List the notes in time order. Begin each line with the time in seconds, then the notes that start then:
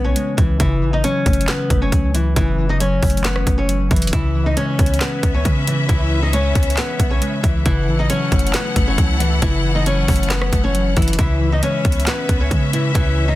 Already playing: B1 C#3 E3 G#3 B3 C#4
0.04 C#4 C#5
0.16 G#3, closed hi-hat
0.37 C#2 E3 E4, kick, closed hi-hat
0.60 F#1 C#3 E3 E4, kick, closed hi-hat
0.82 A1 E3
0.93 D#4 D#5
1.04 F#3 C#4 C#5, closed hi-hat
1.26 F#1 A3, kick, closed hi-hat
1.33 closed hi-hat
1.41 closed hi-hat
1.48 B3 C#4 B4, snare, clap, closed hi-hat
1.70 F#1 A3, kick, closed hi-hat
1.82 C#4 C#5
1.92 C#2 F#3, kick, closed hi-hat
2.14 E3 E4, closed hi-hat
2.36 F#1 C#3 E3 E4, kick, closed hi-hat
2.58 E3
2.69 D#4 D#5
2.80 F#3 C#4 C#5, closed hi-hat
3.02 F#1 A3, kick, closed hi-hat, open hi-hat
3.10 closed hi-hat
3.17 closed hi-hat
3.24 B3 C#4 B4, snare, clap, closed hi-hat
3.36 cross-stick
3.47 F#1 A3, kick, closed hi-hat
3.58 C#4 C#5
3.69 F#3, closed hi-hat
3.91 F#1 E3 E4, kick, closed hi-hat
3.96 closed hi-hat
4.02 closed hi-hat
4.07 closed hi-hat
4.13 C#2 C#3 E3 C#4 E4 B4 E5, kick, closed hi-hat
4.35 E3
4.46 D#4 D#5
4.57 G#3 C#4 C#5, closed hi-hat
4.79 C#2 B3, kick, closed hi-hat
4.86 closed hi-hat
4.94 closed hi-hat
5.00 B3 C#4 B4, snare, clap, closed hi-hat
5.23 C#2 B3, kick, closed hi-hat
5.34 C#4 C#5
5.44 C#3 G#3, kick, closed hi-hat
5.67 E3 E4, closed hi-hat
5.89 C#2 C#3 E3 E4, kick, closed hi-hat
6.11 E3
6.22 D#4 D#5
6.33 G#3 C#4 C#5, closed hi-hat
6.55 C#2 B3, kick, closed hi-hat
6.63 closed hi-hat
6.70 closed hi-hat
6.77 B3 C#4 B4, snare, clap, closed hi-hat
6.99 B1 B3, kick, closed hi-hat
7.10 C#4 C#5
7.22 G#3, closed hi-hat
7.43 C#2 E3 E4, kick, closed hi-hat
7.66 F#1 C#3 E3 E4 A4 F#5, kick, closed hi-hat
7.88 A1 E3
7.99 D#4 D#5
8.10 F#3 C#4 C#5, closed hi-hat
8.32 F#1 A3, kick, closed hi-hat
8.39 closed hi-hat
8.47 closed hi-hat
8.53 B3 C#4 B4, snare, clap, closed hi-hat
8.76 F#1 A3, kick, closed hi-hat
8.87 C#4 C#5
8.98 C#2 F#3, kick, closed hi-hat
9.20 E3 E4, closed hi-hat
9.42 F#1 C#3 E3 E4, kick, closed hi-hat
9.64 E3
9.75 D#4 D#5
9.86 F#3 C#4 C#5, closed hi-hat
10.08 F#1 A3, kick, closed hi-hat, open hi-hat
10.16 closed hi-hat
10.23 closed hi-hat
10.30 B3 C#4 B4, snare, clap, closed hi-hat
10.42 cross-stick
10.53 F#1 A3, kick, closed hi-hat
10.64 C#4 C#5
10.74 F#3, closed hi-hat
10.97 F#1 E3 E4, kick, closed hi-hat
11.02 closed hi-hat
11.08 closed hi-hat
11.13 closed hi-hat
11.19 C#2 C#3 E3 C#4 E4 B4 E5, kick, closed hi-hat
11.41 E3
11.52 D#4 D#5
11.63 G#3 C#4 C#5, closed hi-hat
11.85 C#2 B3, kick, closed hi-hat
11.92 closed hi-hat
12.00 closed hi-hat
12.06 B3 C#4 B4, snare, clap, closed hi-hat
12.29 C#2 B3, kick, closed hi-hat
12.40 C#4 C#5
12.50 C#3 G#3, kick, closed hi-hat
12.73 E3 E4, closed hi-hat
12.94 C#2 C#3 E3 E4 C#5, kick, closed hi-hat
13.17 E3
13.28 D#4 D#5